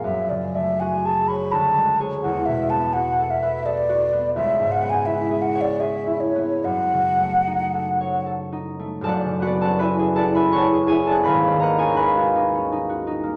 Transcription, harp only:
\new Staff \with { instrumentName = "Harp" } { \time 3/4 \key fis \minor \tempo 4 = 82 << { r2. | r2. | r2. | r2. |
<a' d'' fis'' a''>8 <fis' b' d'' fis''>16 <a' d'' fis'' a''>16 <b' e'' gis'' b''>8 <a' d'' fis'' a''>16 <b' e'' gis'' b''>16 <cis'' fis'' a'' cis'''>8 <gis' cis'' e'' gis''>16 <a' d'' fis'' a''>16 | <b' eis'' gis'' b''>8 <ais' dis'' fis'' ais''>16 <gis' cis'' eis'' gis''>16 <b' eis'' gis'' b''>2 | } \\ { \tuplet 3/2 { <fis, aes aes' des''>8 cis8 a8 fis'8 gis'8 cis''8 d,8 gis8 <gis' cis''>8 } | \tuplet 3/2 { e,8 b,8 b8 fis'8 a'8 b'8 a'8 fis'8 b8 } | \tuplet 3/2 { cis,8 gis,8 b8 e'8 gis'8 cis''8 gis'8 e'8 b8 } | \tuplet 3/2 { fis,8 cis8 a8 dis'8 a'8 cis''8 a'8 dis'8 a8 } |
<fis,, fis,>16 cis16 b16 cis'16 e'16 gis'16 e'16 cis'16 e'16 gis'16 e'16 b16 | gis,,16 dis,16 ais16 cis'16 dis'16 fis'16 dis'16 cis'16 dis'16 fis'16 dis'16 ais16 | } >> }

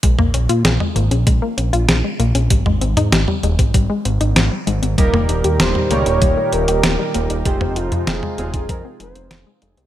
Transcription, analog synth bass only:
\new Staff \with { instrumentName = "Analog synth bass" } { \clef bass \time 4/4 \key ees \mixolydian \tempo 4 = 97 bes,,16 bes,,16 bes,,16 bes,16 bes,,16 r16 aes,,16 bes,,16 bes,,16 r16 bes,,16 bes,,16 bes,,16 r16 bes,,16 bes,,16 | aes,,16 aes,,16 aes,,16 aes,16 aes,,16 r16 ees,,16 aes,,16 aes,,16 r16 aes,,16 aes,,16 aes,,16 r16 aes,,16 aes,,16 | ees,,16 ees,,16 ees,,16 ees,16 ees,,16 r16 des,16 ees,,16 ees,,16 r16 ees,,16 ees,,16 ees,,16 r16 ees,,16 ees,,16 | f,,16 f,,16 f,,16 f,16 f,,16 r16 ees,,16 f,,16 f,16 r16 f,,16 f,,16 f,,16 r16 f,,16 c,16 | }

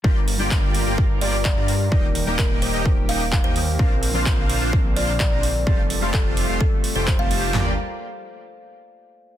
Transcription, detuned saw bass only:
\new Staff \with { instrumentName = "Detuned saw bass" } { \clef bass \time 4/4 \key g \minor \tempo 4 = 128 g,,8. g,,4 g,,8. g,,8. g,8. | ees,,8. ees,,4 ees,,8. ees,,8. ees,8. | bes,,8. bes,,4 bes,,8. bes,,8. bes,,8. | f,,8. f,,4 f,,16 r8. f,,8 f,,8. |
g,,8 r2. r8 | }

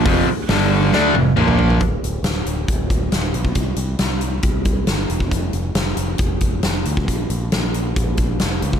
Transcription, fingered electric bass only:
\new Staff \with { instrumentName = "Fingered electric bass" } { \clef bass \time 4/4 \key bes \lydian \tempo 4 = 136 f,,8 r8 g,,4 d,8 f,,8 bes,,4 | d,,8 d,,8 d,,8 d,,8 d,,4 d,,8 b,,8 | c,8 c,8 c,4 c,4 g,,8 e,,8 | f,,8 f,,8 f,,8 f,,8 f,,4 f,,8 d,8 |
bes,,8 bes,,8 bes,,4 bes,,4 f,,8 cis,8 | }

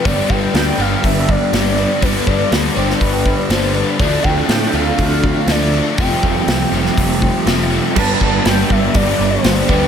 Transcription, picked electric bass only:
\new Staff \with { instrumentName = "Picked electric bass" } { \clef bass \time 4/4 \key g \mixolydian \tempo 4 = 121 g,,8 g,,8 d,8 g,,8 g,,4 g,,4 | g,,8 g,,8 d,8 g,,8 g,,4 g,,4 | d,8 d,8 a,8 d,8 d,4 d,4 | f,,8 f,,8 c,8 f,,8 f,,4 f,,4 |
g,,8 g,,8 g,,8 g,,8 g,,8 g,,8 g,,8 d,8 | }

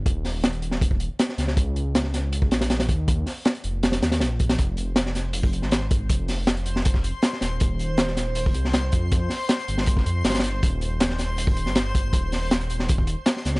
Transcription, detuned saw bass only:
\new Staff \with { instrumentName = "Detuned saw bass" } { \clef bass \time 4/4 \key ees \mixolydian \tempo 4 = 159 ees,,2~ ees,,8. r8. des,8~ | des,2~ des,8 bes,,4 ees,8~ | ees,8 r4 f,,4 ees,8 bes,,4 | f,,2~ f,,8. aes,,4~ aes,,16 |
f,,2~ f,,8. r8. ees,,8~ | ees,,2~ ees,,8 c,4 f,8~ | f,8 r4 g,,4 f,8 g,,4 | ees,,2~ ees,,8. g,,4~ g,,16 |
ees,,2~ ees,,8. r8. des,8 | }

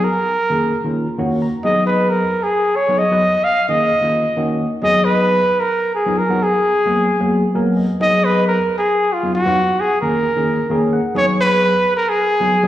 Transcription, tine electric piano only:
<<
  \new Staff \with { instrumentName = "Tine electric piano" } { \time 7/8 \key gis \dorian \tempo 4 = 132 r2 r8 cis''8 ais''8 | r2. r8 | r2. r8 | r2. r8 |
r2 r8 gis''8 dis''8 | r2. r8 | r2 r8 cis''8 fis''8 | r2. r8 | }
  \new Staff \with { instrumentName = "Tine electric piano" } { \time 7/8 \key gis \dorian r4 <dis ais cis' gis'>8 r16 <dis ais cis' eis'>8 r16 <dis ais cis' fis'>8. r16 | <fis b dis' gis'>4~ <fis b dis' gis'>16 r4. <fis b dis' gis'>16 r16 <fis b dis' b'>16 | r4 <dis ais cis' gis'>8 r16 <dis ais cis' eis'>8 r16 <dis ais cis' fis'>8. r16 | <fis b dis' gis'>4~ <fis b dis' gis'>16 r4. <fis b dis' eis'>16 r16 <fis b dis' fis'>16 |
r4 <fis ais b gis'>8 r16 <fis ais b gis'>8 r16 <fis ais b ais'>8. r16 | <fis b dis' gis'>4~ <fis b dis' gis'>16 r4. <fis b dis' eis'>16 r16 <fis b dis' eis'>16 | r4 <dis ais cis' gis'>8 r16 <dis ais cis' gis'>8 r16 <dis ais cis' gis'>8. r16 | <fis b dis' gis'>4~ <fis b dis' gis'>16 r4. <fis b dis' gis'>16 r16 <fis b dis' gis'>16 | }
>>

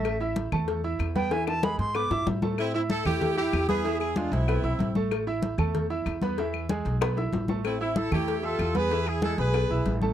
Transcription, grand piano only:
\new Staff \with { instrumentName = "Grand piano" } { \time 4/4 \key a \minor \tempo 4 = 190 <a a' a''>8 <e' e'' e'''>4 <a a' a''>4 <e' e'' e'''>4 <b b' b''>8 | <e e' e''>4 <gis gis' gis''>4 <b b' b''>8 <e' e'' e'''>4 <a a' a''>8 | r8 <e' e'' e'''>4 <a a' a''>4 <e' e'' e'''>4 <b b' b''>8 | <e e' e''>4 <gis gis' gis''>4 <b b' b''>8 <e' e'' e'''>4 <a a' a''>8~ |
<a a' a''>8 <e' e'' e'''>4 <a a' a''>4 <e' e'' e'''>4 <b b' b''>8 | <e e' e''>4 <gis gis' gis''>4 <b b' b''>8 <e' e'' e'''>4 <a a' a''>8~ | <a a' a''>8 <e' e'' e'''>4 <a a' a''>4 <g' e'' e'''>4 <b b' b''>8 | <e e' e''>4 <gis gis' gis''>4 <b b' b''>8 <e' e'' e'''>4 <a a' a''>8 | }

